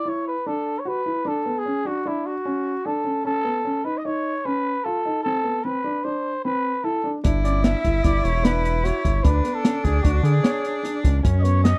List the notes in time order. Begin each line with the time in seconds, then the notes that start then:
0.05 E4 C#5
0.27 B4
0.46 D4 A4
0.79 C#5
0.85 F#4 B4
1.06 E4
1.25 D4 A4
1.46 B3
1.58 G#4
1.66 C#4
1.85 D4 F#4
2.05 D4 E4
2.26 F#4
2.45 C#4
2.86 D4 A4
3.04 C#4
3.25 C#4 A4
3.45 B3
3.65 C#4
3.85 D#4 B4
3.98 D#5
4.05 D#4 C#5
4.45 C#4 B4
4.84 F4 A4
5.06 D#4
5.23 C4 A4
5.44 B3
5.64 C4 B4
5.84 D4
6.04 D4 C5
6.45 C4 B4
6.84 E4 A4
7.04 D4
7.24 G1 D4 E4, kick, closed hi-hat
7.44 C#4 D5, closed hi-hat
7.63 D4 E5, snare, closed hi-hat
7.84 G1 E4, kick, closed hi-hat
8.04 G1 E4 D5, kick, snare, closed hi-hat
8.23 E1 C#5, closed hi-hat
8.43 D4 B4, snare, closed hi-hat
8.65 closed hi-hat
8.83 F#4 C#5, snare, closed hi-hat
9.05 G1 E4, kick, closed hi-hat
9.23 D2 D4 B4, kick, closed hi-hat
9.44 B3, closed hi-hat
9.54 A4
9.64 C#4, snare, closed hi-hat
9.84 D2 D4 G#4, kick, closed hi-hat
10.03 D2 D4 F#4, kick, closed hi-hat
10.23 D3 G#4, closed hi-hat
10.43 C#5, snare, closed hi-hat
10.65 closed hi-hat
10.83 D4, snare, closed hi-hat
11.03 C#2 C#4, kick, closed hi-hat
11.23 F#2 C#4, kick, closed hi-hat
11.38 C#5 D#5
11.43 B3, closed hi-hat
11.64 C#4 D#5, snare, closed hi-hat